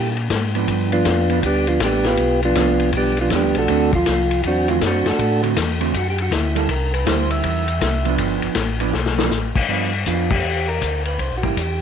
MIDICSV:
0, 0, Header, 1, 5, 480
1, 0, Start_track
1, 0, Tempo, 375469
1, 869, Time_signature, 4, 2, 24, 8
1, 15106, End_track
2, 0, Start_track
2, 0, Title_t, "Tonewheel organ"
2, 0, Program_c, 0, 16
2, 1184, Note_on_c, 0, 65, 91
2, 1185, Note_on_c, 0, 59, 71
2, 1189, Note_on_c, 0, 62, 77
2, 1194, Note_on_c, 0, 53, 74
2, 1788, Note_off_c, 0, 65, 0
2, 1789, Note_off_c, 0, 59, 0
2, 1791, Note_off_c, 0, 62, 0
2, 1793, Note_off_c, 0, 53, 0
2, 1863, Note_on_c, 0, 67, 104
2, 1865, Note_on_c, 0, 55, 78
2, 1865, Note_on_c, 0, 62, 88
2, 1869, Note_on_c, 0, 59, 80
2, 2136, Note_off_c, 0, 59, 0
2, 2140, Note_off_c, 0, 62, 0
2, 2146, Note_on_c, 0, 65, 98
2, 2149, Note_off_c, 0, 67, 0
2, 2150, Note_off_c, 0, 55, 0
2, 2152, Note_on_c, 0, 59, 70
2, 2155, Note_on_c, 0, 53, 74
2, 2155, Note_on_c, 0, 62, 76
2, 2310, Note_off_c, 0, 65, 0
2, 2312, Note_off_c, 0, 59, 0
2, 2314, Note_off_c, 0, 53, 0
2, 2314, Note_off_c, 0, 62, 0
2, 2353, Note_on_c, 0, 67, 88
2, 2355, Note_on_c, 0, 59, 62
2, 2359, Note_on_c, 0, 62, 71
2, 2361, Note_on_c, 0, 55, 66
2, 2628, Note_off_c, 0, 59, 0
2, 2632, Note_off_c, 0, 67, 0
2, 2634, Note_on_c, 0, 71, 101
2, 2637, Note_off_c, 0, 62, 0
2, 2638, Note_off_c, 0, 55, 0
2, 2640, Note_on_c, 0, 65, 81
2, 2643, Note_on_c, 0, 59, 85
2, 2648, Note_on_c, 0, 67, 88
2, 3076, Note_off_c, 0, 71, 0
2, 3079, Note_off_c, 0, 65, 0
2, 3081, Note_off_c, 0, 59, 0
2, 3083, Note_off_c, 0, 67, 0
2, 3127, Note_on_c, 0, 65, 96
2, 3132, Note_on_c, 0, 53, 77
2, 3133, Note_on_c, 0, 59, 72
2, 3134, Note_on_c, 0, 62, 79
2, 3721, Note_off_c, 0, 65, 0
2, 3724, Note_off_c, 0, 53, 0
2, 3724, Note_off_c, 0, 59, 0
2, 3725, Note_off_c, 0, 62, 0
2, 3793, Note_on_c, 0, 67, 103
2, 3800, Note_on_c, 0, 55, 79
2, 3805, Note_on_c, 0, 59, 80
2, 3805, Note_on_c, 0, 62, 74
2, 4075, Note_off_c, 0, 67, 0
2, 4079, Note_off_c, 0, 55, 0
2, 4081, Note_off_c, 0, 59, 0
2, 4081, Note_off_c, 0, 62, 0
2, 4103, Note_on_c, 0, 59, 73
2, 4106, Note_on_c, 0, 65, 87
2, 4107, Note_on_c, 0, 53, 72
2, 4113, Note_on_c, 0, 62, 72
2, 4249, Note_off_c, 0, 59, 0
2, 4251, Note_off_c, 0, 53, 0
2, 4251, Note_off_c, 0, 65, 0
2, 4254, Note_off_c, 0, 62, 0
2, 4279, Note_on_c, 0, 67, 86
2, 4288, Note_on_c, 0, 55, 64
2, 4289, Note_on_c, 0, 62, 65
2, 4291, Note_on_c, 0, 59, 65
2, 4558, Note_off_c, 0, 67, 0
2, 4563, Note_off_c, 0, 55, 0
2, 4563, Note_off_c, 0, 62, 0
2, 4564, Note_off_c, 0, 59, 0
2, 4576, Note_on_c, 0, 69, 104
2, 4580, Note_on_c, 0, 62, 85
2, 4582, Note_on_c, 0, 57, 79
2, 4584, Note_on_c, 0, 66, 82
2, 5007, Note_off_c, 0, 69, 0
2, 5010, Note_off_c, 0, 62, 0
2, 5011, Note_off_c, 0, 57, 0
2, 5012, Note_off_c, 0, 66, 0
2, 5052, Note_on_c, 0, 65, 100
2, 5063, Note_on_c, 0, 53, 72
2, 5644, Note_off_c, 0, 65, 0
2, 5650, Note_off_c, 0, 53, 0
2, 5714, Note_on_c, 0, 66, 97
2, 5721, Note_on_c, 0, 60, 83
2, 5721, Note_on_c, 0, 62, 80
2, 5725, Note_on_c, 0, 54, 72
2, 5995, Note_off_c, 0, 66, 0
2, 5999, Note_off_c, 0, 60, 0
2, 5999, Note_off_c, 0, 62, 0
2, 6001, Note_off_c, 0, 54, 0
2, 6005, Note_on_c, 0, 65, 101
2, 6017, Note_on_c, 0, 53, 80
2, 6160, Note_off_c, 0, 65, 0
2, 6166, Note_off_c, 0, 53, 0
2, 6216, Note_on_c, 0, 66, 83
2, 6219, Note_on_c, 0, 62, 67
2, 6222, Note_on_c, 0, 54, 74
2, 6224, Note_on_c, 0, 60, 75
2, 6485, Note_off_c, 0, 62, 0
2, 6486, Note_off_c, 0, 66, 0
2, 6489, Note_off_c, 0, 54, 0
2, 6490, Note_off_c, 0, 60, 0
2, 6493, Note_on_c, 0, 69, 89
2, 6500, Note_on_c, 0, 57, 70
2, 6501, Note_on_c, 0, 62, 76
2, 6503, Note_on_c, 0, 66, 75
2, 6925, Note_off_c, 0, 69, 0
2, 6929, Note_off_c, 0, 57, 0
2, 6929, Note_off_c, 0, 62, 0
2, 6931, Note_off_c, 0, 66, 0
2, 7632, Note_on_c, 0, 66, 83
2, 7768, Note_off_c, 0, 66, 0
2, 7799, Note_on_c, 0, 67, 105
2, 7931, Note_off_c, 0, 67, 0
2, 7951, Note_on_c, 0, 66, 91
2, 8087, Note_off_c, 0, 66, 0
2, 8107, Note_on_c, 0, 64, 79
2, 8390, Note_off_c, 0, 64, 0
2, 8394, Note_on_c, 0, 69, 86
2, 8553, Note_off_c, 0, 69, 0
2, 8575, Note_on_c, 0, 70, 89
2, 8864, Note_off_c, 0, 70, 0
2, 8871, Note_on_c, 0, 71, 92
2, 9030, Note_off_c, 0, 71, 0
2, 9050, Note_on_c, 0, 72, 87
2, 9341, Note_off_c, 0, 72, 0
2, 9349, Note_on_c, 0, 76, 100
2, 10422, Note_off_c, 0, 76, 0
2, 12876, Note_on_c, 0, 65, 83
2, 13175, Note_on_c, 0, 67, 83
2, 13191, Note_off_c, 0, 65, 0
2, 13656, Note_on_c, 0, 70, 97
2, 13671, Note_off_c, 0, 67, 0
2, 14104, Note_off_c, 0, 70, 0
2, 14143, Note_on_c, 0, 71, 86
2, 14309, Note_on_c, 0, 72, 91
2, 14316, Note_off_c, 0, 71, 0
2, 14525, Note_off_c, 0, 72, 0
2, 14540, Note_on_c, 0, 66, 69
2, 14619, Note_off_c, 0, 66, 0
2, 14632, Note_on_c, 0, 67, 87
2, 14785, Note_off_c, 0, 67, 0
2, 14801, Note_on_c, 0, 67, 84
2, 15106, Note_off_c, 0, 67, 0
2, 15106, End_track
3, 0, Start_track
3, 0, Title_t, "Hollow-body jazz guitar"
3, 0, Program_c, 1, 26
3, 0, Note_on_c, 1, 55, 70
3, 0, Note_on_c, 1, 58, 73
3, 0, Note_on_c, 1, 64, 76
3, 157, Note_off_c, 1, 55, 0
3, 163, Note_off_c, 1, 58, 0
3, 165, Note_off_c, 1, 64, 0
3, 704, Note_on_c, 1, 53, 67
3, 708, Note_on_c, 1, 59, 71
3, 719, Note_on_c, 1, 62, 71
3, 1319, Note_off_c, 1, 53, 0
3, 1321, Note_off_c, 1, 59, 0
3, 1327, Note_off_c, 1, 62, 0
3, 1655, Note_on_c, 1, 53, 75
3, 1664, Note_on_c, 1, 59, 70
3, 1668, Note_on_c, 1, 62, 73
3, 1811, Note_off_c, 1, 53, 0
3, 1816, Note_off_c, 1, 59, 0
3, 1818, Note_off_c, 1, 62, 0
3, 3274, Note_on_c, 1, 53, 70
3, 3286, Note_on_c, 1, 59, 74
3, 3293, Note_on_c, 1, 62, 73
3, 4002, Note_off_c, 1, 53, 0
3, 4009, Note_off_c, 1, 59, 0
3, 4012, Note_off_c, 1, 62, 0
3, 4241, Note_on_c, 1, 53, 55
3, 4250, Note_on_c, 1, 59, 59
3, 4257, Note_on_c, 1, 62, 66
3, 4714, Note_on_c, 1, 50, 66
3, 4716, Note_off_c, 1, 53, 0
3, 4721, Note_on_c, 1, 57, 73
3, 4722, Note_off_c, 1, 59, 0
3, 4722, Note_off_c, 1, 62, 0
3, 4727, Note_on_c, 1, 66, 80
3, 4729, Note_on_c, 1, 60, 85
3, 4993, Note_off_c, 1, 50, 0
3, 4997, Note_off_c, 1, 57, 0
3, 4999, Note_off_c, 1, 66, 0
3, 5001, Note_off_c, 1, 60, 0
3, 5984, Note_on_c, 1, 50, 66
3, 5989, Note_on_c, 1, 57, 73
3, 5993, Note_on_c, 1, 60, 70
3, 6000, Note_on_c, 1, 66, 69
3, 6137, Note_off_c, 1, 50, 0
3, 6139, Note_off_c, 1, 57, 0
3, 6142, Note_off_c, 1, 60, 0
3, 6145, Note_off_c, 1, 66, 0
3, 6929, Note_on_c, 1, 50, 77
3, 6937, Note_on_c, 1, 57, 86
3, 6941, Note_on_c, 1, 60, 74
3, 6947, Note_on_c, 1, 66, 87
3, 7089, Note_off_c, 1, 50, 0
3, 7093, Note_off_c, 1, 57, 0
3, 7095, Note_off_c, 1, 60, 0
3, 7098, Note_off_c, 1, 66, 0
3, 7420, Note_on_c, 1, 50, 59
3, 7425, Note_on_c, 1, 57, 77
3, 7426, Note_on_c, 1, 60, 67
3, 7432, Note_on_c, 1, 66, 69
3, 7574, Note_off_c, 1, 50, 0
3, 7577, Note_off_c, 1, 57, 0
3, 7577, Note_off_c, 1, 60, 0
3, 7580, Note_off_c, 1, 66, 0
3, 8376, Note_on_c, 1, 55, 82
3, 8385, Note_on_c, 1, 58, 86
3, 8391, Note_on_c, 1, 64, 85
3, 8531, Note_off_c, 1, 55, 0
3, 8536, Note_off_c, 1, 58, 0
3, 8539, Note_off_c, 1, 64, 0
3, 9026, Note_on_c, 1, 55, 76
3, 9033, Note_on_c, 1, 58, 71
3, 9040, Note_on_c, 1, 64, 78
3, 9755, Note_off_c, 1, 55, 0
3, 9758, Note_off_c, 1, 58, 0
3, 9762, Note_off_c, 1, 64, 0
3, 10289, Note_on_c, 1, 53, 77
3, 10300, Note_on_c, 1, 59, 84
3, 10306, Note_on_c, 1, 62, 89
3, 10909, Note_off_c, 1, 53, 0
3, 10914, Note_off_c, 1, 59, 0
3, 10917, Note_off_c, 1, 62, 0
3, 11252, Note_on_c, 1, 53, 85
3, 11258, Note_on_c, 1, 59, 73
3, 11266, Note_on_c, 1, 62, 91
3, 11408, Note_off_c, 1, 53, 0
3, 11411, Note_off_c, 1, 59, 0
3, 11414, Note_off_c, 1, 62, 0
3, 11734, Note_on_c, 1, 53, 73
3, 11742, Note_on_c, 1, 59, 77
3, 11746, Note_on_c, 1, 62, 83
3, 11888, Note_off_c, 1, 53, 0
3, 11892, Note_off_c, 1, 59, 0
3, 11894, Note_off_c, 1, 62, 0
3, 12383, Note_on_c, 1, 53, 53
3, 12394, Note_on_c, 1, 59, 67
3, 12401, Note_on_c, 1, 62, 65
3, 12664, Note_off_c, 1, 53, 0
3, 12669, Note_off_c, 1, 59, 0
3, 12673, Note_off_c, 1, 62, 0
3, 12870, Note_on_c, 1, 53, 59
3, 12880, Note_on_c, 1, 59, 51
3, 12882, Note_on_c, 1, 62, 64
3, 13147, Note_off_c, 1, 53, 0
3, 13152, Note_off_c, 1, 59, 0
3, 13153, Note_off_c, 1, 62, 0
3, 14624, Note_on_c, 1, 55, 55
3, 14627, Note_on_c, 1, 58, 59
3, 14634, Note_on_c, 1, 64, 62
3, 14775, Note_off_c, 1, 55, 0
3, 14776, Note_off_c, 1, 58, 0
3, 14780, Note_off_c, 1, 64, 0
3, 15106, End_track
4, 0, Start_track
4, 0, Title_t, "Tonewheel organ"
4, 0, Program_c, 2, 16
4, 0, Note_on_c, 2, 46, 90
4, 372, Note_off_c, 2, 46, 0
4, 381, Note_on_c, 2, 44, 103
4, 851, Note_off_c, 2, 44, 0
4, 862, Note_on_c, 2, 43, 94
4, 1332, Note_off_c, 2, 43, 0
4, 1344, Note_on_c, 2, 41, 99
4, 1814, Note_off_c, 2, 41, 0
4, 1827, Note_on_c, 2, 38, 85
4, 2295, Note_off_c, 2, 38, 0
4, 2301, Note_on_c, 2, 33, 92
4, 2773, Note_off_c, 2, 33, 0
4, 2780, Note_on_c, 2, 35, 99
4, 3252, Note_off_c, 2, 35, 0
4, 3269, Note_on_c, 2, 36, 94
4, 3737, Note_off_c, 2, 36, 0
4, 3744, Note_on_c, 2, 35, 80
4, 4215, Note_off_c, 2, 35, 0
4, 4234, Note_on_c, 2, 40, 96
4, 4389, Note_off_c, 2, 40, 0
4, 4389, Note_on_c, 2, 38, 50
4, 4552, Note_off_c, 2, 38, 0
4, 4553, Note_on_c, 2, 35, 66
4, 4703, Note_off_c, 2, 35, 0
4, 4708, Note_on_c, 2, 38, 86
4, 5177, Note_off_c, 2, 38, 0
4, 5196, Note_on_c, 2, 36, 92
4, 5661, Note_off_c, 2, 36, 0
4, 5674, Note_on_c, 2, 40, 76
4, 6139, Note_off_c, 2, 40, 0
4, 6154, Note_on_c, 2, 42, 92
4, 6442, Note_off_c, 2, 42, 0
4, 6465, Note_on_c, 2, 42, 41
4, 6550, Note_off_c, 2, 42, 0
4, 6633, Note_on_c, 2, 45, 98
4, 7098, Note_off_c, 2, 45, 0
4, 7110, Note_on_c, 2, 40, 90
4, 7577, Note_off_c, 2, 40, 0
4, 7588, Note_on_c, 2, 42, 80
4, 8055, Note_off_c, 2, 42, 0
4, 8074, Note_on_c, 2, 38, 99
4, 8538, Note_off_c, 2, 38, 0
4, 8550, Note_on_c, 2, 36, 94
4, 9015, Note_off_c, 2, 36, 0
4, 9025, Note_on_c, 2, 38, 99
4, 9492, Note_off_c, 2, 38, 0
4, 9511, Note_on_c, 2, 40, 88
4, 9975, Note_off_c, 2, 40, 0
4, 9984, Note_on_c, 2, 36, 101
4, 10451, Note_off_c, 2, 36, 0
4, 10464, Note_on_c, 2, 31, 97
4, 10753, Note_off_c, 2, 31, 0
4, 10774, Note_on_c, 2, 31, 39
4, 10860, Note_off_c, 2, 31, 0
4, 10943, Note_on_c, 2, 33, 101
4, 11410, Note_off_c, 2, 33, 0
4, 11427, Note_on_c, 2, 35, 86
4, 11892, Note_off_c, 2, 35, 0
4, 11897, Note_on_c, 2, 33, 104
4, 12189, Note_off_c, 2, 33, 0
4, 12212, Note_on_c, 2, 33, 43
4, 12298, Note_off_c, 2, 33, 0
4, 12386, Note_on_c, 2, 43, 84
4, 12852, Note_off_c, 2, 43, 0
4, 12863, Note_on_c, 2, 41, 81
4, 13331, Note_off_c, 2, 41, 0
4, 13338, Note_on_c, 2, 40, 75
4, 13809, Note_off_c, 2, 40, 0
4, 13827, Note_on_c, 2, 38, 80
4, 14294, Note_off_c, 2, 38, 0
4, 14302, Note_on_c, 2, 36, 83
4, 14461, Note_off_c, 2, 36, 0
4, 14469, Note_on_c, 2, 34, 55
4, 14626, Note_on_c, 2, 31, 60
4, 14629, Note_off_c, 2, 34, 0
4, 14777, Note_off_c, 2, 31, 0
4, 14784, Note_on_c, 2, 40, 86
4, 15106, Note_off_c, 2, 40, 0
4, 15106, End_track
5, 0, Start_track
5, 0, Title_t, "Drums"
5, 211, Note_on_c, 9, 51, 51
5, 339, Note_off_c, 9, 51, 0
5, 384, Note_on_c, 9, 44, 54
5, 384, Note_on_c, 9, 51, 78
5, 385, Note_on_c, 9, 36, 22
5, 385, Note_on_c, 9, 38, 83
5, 512, Note_off_c, 9, 44, 0
5, 512, Note_off_c, 9, 51, 0
5, 513, Note_off_c, 9, 36, 0
5, 513, Note_off_c, 9, 38, 0
5, 699, Note_on_c, 9, 51, 53
5, 826, Note_off_c, 9, 51, 0
5, 866, Note_on_c, 9, 36, 26
5, 868, Note_on_c, 9, 51, 66
5, 994, Note_off_c, 9, 36, 0
5, 996, Note_off_c, 9, 51, 0
5, 1176, Note_on_c, 9, 51, 52
5, 1304, Note_off_c, 9, 51, 0
5, 1343, Note_on_c, 9, 44, 76
5, 1343, Note_on_c, 9, 51, 84
5, 1345, Note_on_c, 9, 38, 88
5, 1346, Note_on_c, 9, 36, 25
5, 1471, Note_off_c, 9, 44, 0
5, 1471, Note_off_c, 9, 51, 0
5, 1472, Note_off_c, 9, 38, 0
5, 1474, Note_off_c, 9, 36, 0
5, 1656, Note_on_c, 9, 51, 52
5, 1784, Note_off_c, 9, 51, 0
5, 1826, Note_on_c, 9, 36, 25
5, 1826, Note_on_c, 9, 51, 76
5, 1953, Note_off_c, 9, 36, 0
5, 1954, Note_off_c, 9, 51, 0
5, 2136, Note_on_c, 9, 51, 50
5, 2264, Note_off_c, 9, 51, 0
5, 2302, Note_on_c, 9, 44, 69
5, 2302, Note_on_c, 9, 51, 78
5, 2304, Note_on_c, 9, 38, 80
5, 2308, Note_on_c, 9, 36, 21
5, 2430, Note_off_c, 9, 44, 0
5, 2430, Note_off_c, 9, 51, 0
5, 2432, Note_off_c, 9, 38, 0
5, 2436, Note_off_c, 9, 36, 0
5, 2613, Note_on_c, 9, 51, 50
5, 2614, Note_on_c, 9, 38, 60
5, 2741, Note_off_c, 9, 51, 0
5, 2742, Note_off_c, 9, 38, 0
5, 2778, Note_on_c, 9, 51, 61
5, 2785, Note_on_c, 9, 36, 20
5, 2906, Note_off_c, 9, 51, 0
5, 2912, Note_off_c, 9, 36, 0
5, 3100, Note_on_c, 9, 51, 52
5, 3228, Note_off_c, 9, 51, 0
5, 3265, Note_on_c, 9, 44, 72
5, 3265, Note_on_c, 9, 51, 73
5, 3266, Note_on_c, 9, 38, 86
5, 3269, Note_on_c, 9, 36, 27
5, 3392, Note_off_c, 9, 44, 0
5, 3392, Note_off_c, 9, 51, 0
5, 3394, Note_off_c, 9, 38, 0
5, 3397, Note_off_c, 9, 36, 0
5, 3573, Note_on_c, 9, 51, 57
5, 3701, Note_off_c, 9, 51, 0
5, 3740, Note_on_c, 9, 51, 77
5, 3749, Note_on_c, 9, 36, 26
5, 3868, Note_off_c, 9, 51, 0
5, 3876, Note_off_c, 9, 36, 0
5, 4051, Note_on_c, 9, 51, 49
5, 4179, Note_off_c, 9, 51, 0
5, 4220, Note_on_c, 9, 44, 52
5, 4220, Note_on_c, 9, 51, 69
5, 4222, Note_on_c, 9, 38, 68
5, 4230, Note_on_c, 9, 36, 21
5, 4348, Note_off_c, 9, 44, 0
5, 4348, Note_off_c, 9, 51, 0
5, 4350, Note_off_c, 9, 38, 0
5, 4358, Note_off_c, 9, 36, 0
5, 4533, Note_on_c, 9, 51, 51
5, 4661, Note_off_c, 9, 51, 0
5, 4704, Note_on_c, 9, 51, 76
5, 4712, Note_on_c, 9, 36, 25
5, 4832, Note_off_c, 9, 51, 0
5, 4840, Note_off_c, 9, 36, 0
5, 5019, Note_on_c, 9, 51, 51
5, 5023, Note_on_c, 9, 36, 72
5, 5147, Note_off_c, 9, 51, 0
5, 5151, Note_off_c, 9, 36, 0
5, 5190, Note_on_c, 9, 44, 60
5, 5190, Note_on_c, 9, 51, 82
5, 5191, Note_on_c, 9, 38, 75
5, 5195, Note_on_c, 9, 36, 25
5, 5318, Note_off_c, 9, 44, 0
5, 5318, Note_off_c, 9, 51, 0
5, 5319, Note_off_c, 9, 38, 0
5, 5323, Note_off_c, 9, 36, 0
5, 5508, Note_on_c, 9, 51, 53
5, 5635, Note_off_c, 9, 51, 0
5, 5669, Note_on_c, 9, 51, 73
5, 5676, Note_on_c, 9, 36, 21
5, 5797, Note_off_c, 9, 51, 0
5, 5804, Note_off_c, 9, 36, 0
5, 5984, Note_on_c, 9, 51, 53
5, 6112, Note_off_c, 9, 51, 0
5, 6154, Note_on_c, 9, 36, 21
5, 6154, Note_on_c, 9, 44, 70
5, 6154, Note_on_c, 9, 51, 70
5, 6155, Note_on_c, 9, 38, 85
5, 6282, Note_off_c, 9, 36, 0
5, 6282, Note_off_c, 9, 44, 0
5, 6282, Note_off_c, 9, 51, 0
5, 6283, Note_off_c, 9, 38, 0
5, 6466, Note_on_c, 9, 51, 53
5, 6467, Note_on_c, 9, 38, 68
5, 6593, Note_off_c, 9, 51, 0
5, 6595, Note_off_c, 9, 38, 0
5, 6635, Note_on_c, 9, 36, 23
5, 6638, Note_on_c, 9, 51, 67
5, 6763, Note_off_c, 9, 36, 0
5, 6766, Note_off_c, 9, 51, 0
5, 6948, Note_on_c, 9, 51, 53
5, 7076, Note_off_c, 9, 51, 0
5, 7112, Note_on_c, 9, 36, 21
5, 7114, Note_on_c, 9, 44, 69
5, 7114, Note_on_c, 9, 51, 95
5, 7115, Note_on_c, 9, 38, 85
5, 7240, Note_off_c, 9, 36, 0
5, 7242, Note_off_c, 9, 44, 0
5, 7242, Note_off_c, 9, 51, 0
5, 7243, Note_off_c, 9, 38, 0
5, 7425, Note_on_c, 9, 51, 57
5, 7552, Note_off_c, 9, 51, 0
5, 7593, Note_on_c, 9, 36, 28
5, 7598, Note_on_c, 9, 51, 71
5, 7720, Note_off_c, 9, 36, 0
5, 7726, Note_off_c, 9, 51, 0
5, 7904, Note_on_c, 9, 51, 56
5, 8032, Note_off_c, 9, 51, 0
5, 8071, Note_on_c, 9, 36, 26
5, 8076, Note_on_c, 9, 44, 67
5, 8076, Note_on_c, 9, 51, 80
5, 8077, Note_on_c, 9, 38, 78
5, 8199, Note_off_c, 9, 36, 0
5, 8204, Note_off_c, 9, 44, 0
5, 8204, Note_off_c, 9, 51, 0
5, 8205, Note_off_c, 9, 38, 0
5, 8386, Note_on_c, 9, 51, 54
5, 8514, Note_off_c, 9, 51, 0
5, 8550, Note_on_c, 9, 36, 25
5, 8550, Note_on_c, 9, 51, 70
5, 8678, Note_off_c, 9, 36, 0
5, 8678, Note_off_c, 9, 51, 0
5, 8868, Note_on_c, 9, 51, 55
5, 8996, Note_off_c, 9, 51, 0
5, 9031, Note_on_c, 9, 36, 26
5, 9033, Note_on_c, 9, 44, 66
5, 9033, Note_on_c, 9, 51, 77
5, 9035, Note_on_c, 9, 38, 92
5, 9159, Note_off_c, 9, 36, 0
5, 9161, Note_off_c, 9, 44, 0
5, 9161, Note_off_c, 9, 51, 0
5, 9163, Note_off_c, 9, 38, 0
5, 9338, Note_on_c, 9, 51, 64
5, 9466, Note_off_c, 9, 51, 0
5, 9505, Note_on_c, 9, 51, 74
5, 9509, Note_on_c, 9, 36, 23
5, 9633, Note_off_c, 9, 51, 0
5, 9637, Note_off_c, 9, 36, 0
5, 9814, Note_on_c, 9, 51, 53
5, 9942, Note_off_c, 9, 51, 0
5, 9988, Note_on_c, 9, 36, 27
5, 9988, Note_on_c, 9, 44, 65
5, 9988, Note_on_c, 9, 51, 82
5, 9989, Note_on_c, 9, 38, 82
5, 10116, Note_off_c, 9, 36, 0
5, 10116, Note_off_c, 9, 44, 0
5, 10116, Note_off_c, 9, 51, 0
5, 10117, Note_off_c, 9, 38, 0
5, 10291, Note_on_c, 9, 51, 53
5, 10419, Note_off_c, 9, 51, 0
5, 10460, Note_on_c, 9, 51, 73
5, 10465, Note_on_c, 9, 36, 20
5, 10588, Note_off_c, 9, 51, 0
5, 10593, Note_off_c, 9, 36, 0
5, 10766, Note_on_c, 9, 51, 55
5, 10894, Note_off_c, 9, 51, 0
5, 10927, Note_on_c, 9, 44, 70
5, 10927, Note_on_c, 9, 51, 90
5, 10929, Note_on_c, 9, 38, 81
5, 10940, Note_on_c, 9, 36, 29
5, 11055, Note_off_c, 9, 44, 0
5, 11055, Note_off_c, 9, 51, 0
5, 11056, Note_off_c, 9, 38, 0
5, 11068, Note_off_c, 9, 36, 0
5, 11250, Note_on_c, 9, 51, 60
5, 11377, Note_off_c, 9, 51, 0
5, 11418, Note_on_c, 9, 38, 60
5, 11546, Note_off_c, 9, 38, 0
5, 11580, Note_on_c, 9, 38, 70
5, 11708, Note_off_c, 9, 38, 0
5, 11741, Note_on_c, 9, 38, 101
5, 11869, Note_off_c, 9, 38, 0
5, 11904, Note_on_c, 9, 44, 67
5, 11906, Note_on_c, 9, 38, 62
5, 12032, Note_off_c, 9, 44, 0
5, 12034, Note_off_c, 9, 38, 0
5, 12215, Note_on_c, 9, 36, 80
5, 12216, Note_on_c, 9, 49, 88
5, 12343, Note_off_c, 9, 36, 0
5, 12344, Note_off_c, 9, 49, 0
5, 12385, Note_on_c, 9, 36, 16
5, 12513, Note_off_c, 9, 36, 0
5, 12699, Note_on_c, 9, 51, 42
5, 12826, Note_off_c, 9, 51, 0
5, 12861, Note_on_c, 9, 44, 63
5, 12861, Note_on_c, 9, 51, 67
5, 12864, Note_on_c, 9, 36, 21
5, 12989, Note_off_c, 9, 44, 0
5, 12989, Note_off_c, 9, 51, 0
5, 12991, Note_off_c, 9, 36, 0
5, 13176, Note_on_c, 9, 36, 84
5, 13181, Note_on_c, 9, 49, 79
5, 13303, Note_off_c, 9, 36, 0
5, 13309, Note_off_c, 9, 49, 0
5, 13661, Note_on_c, 9, 51, 40
5, 13789, Note_off_c, 9, 51, 0
5, 13826, Note_on_c, 9, 36, 27
5, 13828, Note_on_c, 9, 44, 51
5, 13828, Note_on_c, 9, 51, 64
5, 13954, Note_off_c, 9, 36, 0
5, 13956, Note_off_c, 9, 44, 0
5, 13956, Note_off_c, 9, 51, 0
5, 14131, Note_on_c, 9, 51, 43
5, 14259, Note_off_c, 9, 51, 0
5, 14306, Note_on_c, 9, 36, 19
5, 14307, Note_on_c, 9, 51, 51
5, 14434, Note_off_c, 9, 36, 0
5, 14434, Note_off_c, 9, 51, 0
5, 14613, Note_on_c, 9, 51, 44
5, 14617, Note_on_c, 9, 36, 50
5, 14741, Note_off_c, 9, 51, 0
5, 14745, Note_off_c, 9, 36, 0
5, 14789, Note_on_c, 9, 36, 22
5, 14792, Note_on_c, 9, 44, 54
5, 14792, Note_on_c, 9, 51, 67
5, 14917, Note_off_c, 9, 36, 0
5, 14920, Note_off_c, 9, 44, 0
5, 14920, Note_off_c, 9, 51, 0
5, 15106, End_track
0, 0, End_of_file